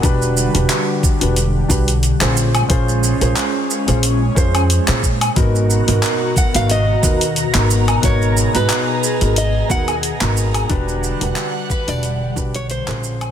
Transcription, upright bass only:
0.03 0.44 E1 loud
0.55 0.64 E1 medium
1.21 1.61 E1 medium
1.70 2.10 B1 loud
2.21 2.61 A#1 medium
2.70 3.10 A#1 medium
3.21 3.31 A#1 medium
3.88 4.27 A#1 medium
4.37 4.77 F2 medium
4.88 5.27 A#2 medium
5.36 5.77 G#1 loud
5.88 5.97 G#1 medium
6.55 6.94 G#1 medium
7.03 7.44 D#2 medium
7.55 7.94 G#1 medium
8.03 8.44 G#1 medium
8.55 8.64 G#1 medium
9.22 9.61 G#1 medium
9.70 10.10 D#2 loud
10.21 10.61 G#1 medium
10.70 11.10 E1 loud
11.21 11.31 E1 medium
11.88 12.27 E1 loud
12.37 12.77 B1 medium
12.88 13.27 A#1 medium

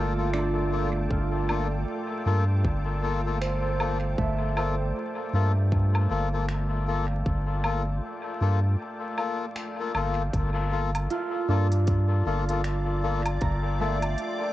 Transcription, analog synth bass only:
0.00 1.07 G1 loud
1.11 1.85 G1 loud
2.26 2.66 G2 loud
2.64 4.15 G1 medium
4.18 4.92 G1 loud
5.33 6.08 G2 medium
6.10 7.23 G1 loud
7.26 8.00 G1 loud
8.41 8.76 G2 medium
9.95 10.30 G1 medium
10.34 11.08 G1 loud
11.49 12.23 G2 medium
12.26 13.38 G1 loud
13.42 14.15 G1 loud

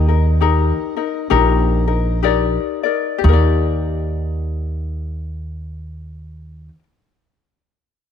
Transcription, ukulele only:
0.08 0.40 D#4 soft
0.08 0.41 A#4 medium
0.41 0.96 D#4 medium
0.41 0.95 G4 medium
0.41 0.95 A#4 medium
0.96 1.29 D#4 medium
0.96 1.30 A#4 medium
1.30 1.87 D#4 medium
1.30 1.87 G4 medium
1.30 1.86 A#4 loud
1.87 2.22 D#4 soft
1.87 2.22 A#4 medium
2.23 2.84 D#4 medium
2.23 2.83 G4 medium
2.23 2.83 A#4 medium
2.23 2.82 D5 medium
2.83 3.23 D#4 soft
2.83 3.24 A#4 medium
2.83 3.23 D5 medium
3.18 6.68 G4 medium
3.24 6.74 D#4 medium
3.29 6.79 A#4 medium
3.33 6.83 D5 medium

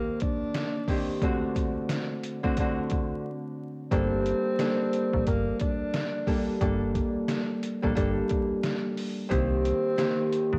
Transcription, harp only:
0.00 0.87 D#3 loud
0.00 0.88 A#3 medium
0.00 0.89 C4 medium
0.00 0.89 G4 loud
0.88 1.27 D#3 medium
0.88 1.20 A#3 medium
0.88 1.20 C4 medium
0.88 1.20 G4 medium
1.22 2.42 D3 medium
1.22 2.43 A3 medium
1.22 2.43 C4 medium
1.22 2.44 F#4 loud
2.43 2.58 D3 loud
2.43 2.59 A3 medium
2.43 2.59 C4 medium
2.43 2.60 F#4 loud
2.59 3.97 D3 loud
2.59 3.26 A3 medium
2.59 3.26 C4 medium
2.59 3.26 F#4 loud
3.91 4.58 G3 medium
3.91 4.55 A#3 medium
3.91 4.55 D4 medium
3.91 4.55 A4 loud
4.59 6.26 G3 medium
4.59 6.27 A#3 medium
4.59 6.27 D4 medium
4.59 6.28 A4 loud
6.27 6.60 G3 medium
6.27 6.59 A#3 medium
6.27 6.59 D4 medium
6.27 6.59 A4 medium
6.61 7.81 G3 medium
6.61 7.83 A#3 medium
6.61 7.83 D4 loud
6.61 7.83 A4 loud
7.82 7.94 G3 medium
7.82 7.94 A#3 medium
7.82 7.95 D4 medium
7.82 7.95 A4 loud
7.95 9.36 G3 loud
7.95 9.29 A#3 medium
7.95 9.35 D4 medium
7.95 9.36 A4 loud
9.29 9.96 D#3 medium
9.29 9.93 A#3 medium
9.29 9.93 C4 medium
9.29 9.94 G4 loud
9.97 10.59 D#3 loud
9.97 10.59 A#3 medium
9.97 10.59 C4 medium
9.97 10.59 G4 loud

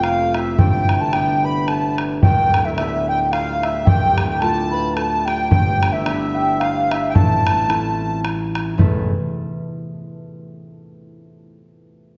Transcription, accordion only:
0.03 0.35 F5 medium
0.34 0.59 E5 medium
0.58 0.68 G5 medium
0.70 0.80 G5 medium
0.81 1.02 G5 medium
1.01 1.14 A5 medium
1.13 1.45 G5 medium
1.45 1.69 B5 medium
1.68 1.97 A5 medium
2.23 2.63 G5 medium
2.66 2.76 E5 medium
2.78 3.06 E5 medium
3.09 3.20 G5 medium
3.33 3.64 F5 medium
3.63 3.88 E5 medium
3.87 4.27 G5 medium
4.30 4.41 G5 medium
4.42 4.95 A5 loud
4.96 5.28 A5 medium
5.27 5.49 G5 medium
5.50 5.91 G5 loud
5.93 6.05 E5 medium
6.06 6.62 E5 medium
6.60 6.92 F5 medium
6.92 7.08 E5 medium
7.10 7.15 G5 medium
7.15 8.21 A5 medium

